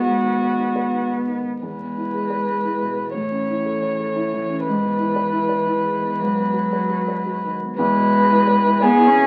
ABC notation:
X:1
M:3/4
L:1/8
Q:1/4=118
K:E
V:1 name="Violin"
F4 z2 | B6 | c6 | B6- |
B4- B z | B4 G2 |]
V:2 name="Harmonium"
z6 | z6 | z6 | z6 |
z6 | [G,EB]6 |]
V:3 name="Grand piano"
(3G,, D, B, (3D B D (3B, D, B, | (3E,, B, E (3G B G (3E B,, B, | (3A,, C E (3A c A (3E E, C | (3G,, B, E (3B E B (3E G, B, |
(3G,, B, F (3B F B (3F D, B, | (3E,, B,, B, (3E B E (3B E B,, |]
V:4 name="Cello" clef=bass
B,4- B, z | G,6 | E,6- | E,6 |
F,4- F, z | G,4 B, C |]